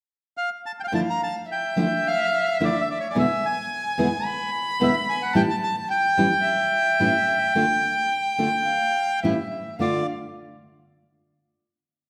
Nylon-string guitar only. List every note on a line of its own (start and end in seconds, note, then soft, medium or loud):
0.92 1.01 D3 medium
0.92 1.01 F3 medium
0.92 1.01 A3 medium
0.92 1.01 D4 medium
0.92 1.01 E4 medium
1.76 1.85 D3 medium
1.76 1.85 F3 medium
1.76 1.85 A3 medium
1.76 1.86 D4 medium
1.76 1.86 E4 medium
2.60 2.69 D3 medium
2.60 2.69 F3 medium
2.60 2.69 A3 medium
2.60 2.69 D4 medium
2.60 2.69 E4 medium
3.15 3.24 E2 medium
3.15 3.24 B2 medium
3.15 3.24 D3 medium
3.15 3.24 G#3 medium
3.15 3.25 B3 medium
3.15 3.25 E4 medium
3.98 4.07 E2 medium
3.98 4.07 B2 medium
3.98 4.07 D3 medium
3.98 4.07 G#3 medium
3.98 4.07 B3 medium
3.98 4.07 E4 medium
4.80 4.89 E2 medium
4.80 4.89 B2 medium
4.80 4.89 D3 medium
4.80 4.89 G#3 medium
4.80 4.89 B3 medium
4.80 4.89 E4 medium
5.35 5.44 A2 medium
5.35 5.44 E3 medium
5.35 5.44 G3 medium
5.35 5.44 C#4 medium
5.35 5.44 E4 medium
6.17 6.26 A2 medium
6.17 6.26 E3 medium
6.17 6.26 G3 medium
6.17 6.27 C#4 medium
6.17 6.27 E4 medium
7.00 7.09 A2 medium
7.00 7.09 E3 medium
7.00 7.09 G3 medium
7.00 7.09 C#4 medium
7.00 7.09 E4 medium
7.55 7.64 D3 medium
7.55 7.64 A3 medium
7.55 7.65 D4 medium
7.55 7.65 F4 medium
8.38 8.47 D3 medium
8.38 8.48 A3 medium
8.38 8.48 D4 medium
8.38 8.48 F4 medium
9.23 9.32 A2 medium
9.23 9.33 E3 medium
9.23 9.33 G3 medium
9.23 9.33 C#4 medium
9.23 9.33 E4 medium
9.79 10.02 D3 medium
9.79 10.02 A3 medium
9.79 10.03 D4 medium
9.79 10.03 F4 medium